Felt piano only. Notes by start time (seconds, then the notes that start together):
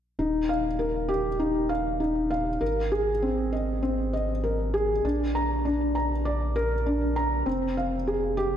0.19 D#4
0.49 F5
0.79 A#4
1.09 G4
1.39 D#4
1.69 F5
2.00 D#4
2.31 F5
2.61 A#4
2.92 G#4
3.22 C4
3.53 D#5
3.83 C4
4.13 D#5
4.43 A#4
4.74 G#4
5.05 D4
5.35 A#5
5.65 D4
5.95 A#5
6.25 D5
6.56 A#4
6.86 D4
7.16 A#5
7.46 C4
7.77 F5
8.07 G#4
8.37 G4